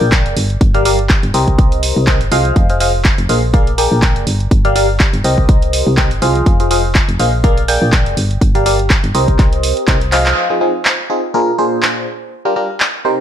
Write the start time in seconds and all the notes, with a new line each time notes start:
Already playing: A#3 G#4 A#4 D5 G5
0.01 A#1
0.12 kick, clap, closed hi-hat
0.26 F1, closed hi-hat
0.37 G1, open hi-hat
0.50 closed hi-hat
0.61 G1, kick, closed hi-hat
0.74 G3 G4 A#4 D5 F5, closed hi-hat
0.85 G3 G4 A#4 D5 F5, open hi-hat
0.99 closed hi-hat
1.09 kick, clap, closed hi-hat
1.23 G1, closed hi-hat
1.34 C2 C4 G4 A#4 C5 D#5, open hi-hat
1.48 kick, closed hi-hat
1.59 kick, closed hi-hat
1.72 closed hi-hat
1.83 open hi-hat
1.96 C2
2.07 C4 G4 A#4 C5 D#5, kick, clap, closed hi-hat
2.21 G1, closed hi-hat
2.32 C2 F3 G#4 C5 D#5 F5, open hi-hat
2.45 closed hi-hat
2.56 F1, kick, closed hi-hat
2.70 F3 G#4 C5 D#5 F5, closed hi-hat
2.80 F3 G#4 C5 D#5 F5, open hi-hat
3.05 kick, clap, closed hi-hat
3.18 F1, closed hi-hat
3.29 A#1 A#3 G#4 C5 D#5 F5, open hi-hat
3.54 A#3 G#4 A#4 D5 F5, kick, closed hi-hat
3.67 closed hi-hat
3.78 A#3 G#4 A#4 D5 G5, open hi-hat
3.92 A#1
4.02 kick, clap, closed hi-hat
4.16 F1, closed hi-hat
4.27 G1, open hi-hat
4.40 closed hi-hat
4.51 G1, kick, closed hi-hat
4.65 G3 G4 A#4 D5 F5, closed hi-hat
4.76 G3 G4 A#4 D5 F5, open hi-hat
5.00 kick, clap, closed hi-hat
5.13 G1, closed hi-hat
5.24 C2 C4 G4 A#4 C5 D#5, open hi-hat
5.38 kick
5.49 kick, closed hi-hat
5.62 closed hi-hat
5.73 open hi-hat
5.87 C2
5.97 C4 G4 A#4 C5 D#5, kick, clap, closed hi-hat
6.11 G1, closed hi-hat
6.22 C2 F3 G#4 C5 D#5 F5, open hi-hat
6.35 closed hi-hat
6.46 F1, kick, closed hi-hat
6.60 F3 G#4 C5 D#5 F5, closed hi-hat
6.71 F3 G#4 C5 D#5 F5, open hi-hat
6.95 kick, clap, closed hi-hat
7.09 F1, closed hi-hat
7.19 A#1 A#3 G#4 C5 D#5 F5, open hi-hat
7.44 A#3 G#4 A#4 D5 F5, kick, closed hi-hat
7.57 closed hi-hat
7.68 A#3 G#4 A#4 D5 G5, open hi-hat
7.82 A#1
7.92 kick, clap, closed hi-hat
8.06 F1, closed hi-hat
8.17 G1, open hi-hat
8.31 closed hi-hat
8.41 G1, kick, closed hi-hat
8.55 G3 G4 A#4 D5 F5, closed hi-hat
8.66 G3 G4 A#4 D5 F5, open hi-hat
8.79 closed hi-hat
8.90 kick, clap, closed hi-hat
9.04 G1, closed hi-hat
9.15 C2 C4 G4 A#4 C5 D#5, open hi-hat
9.28 kick, closed hi-hat
9.39 kick, clap, closed hi-hat
9.53 closed hi-hat
9.63 open hi-hat
9.77 closed hi-hat
9.88 C2 C4 G4 A#4 C5 D#5, kick, clap, closed hi-hat
10.01 closed hi-hat
10.12 F3 G#4 C5 D#5 F5, clap, open hi-hat
10.26 clap, closed hi-hat
10.50 F3 C4 D#4 F4 G#4
10.61 F3 C4 D#4 F4 G#4
10.85 clap
11.10 C4 D#4 F4 G#4
11.34 A#2 D4 F4 G#4 A#4
11.58 A#2 D4 F4 G#4 C5
11.83 clap
12.45 G3 D4 F4 G4 A#4
12.56 G3 D4 F4 G4 A#4
12.80 clap
13.05 C3 D#4 G4 A#4 C5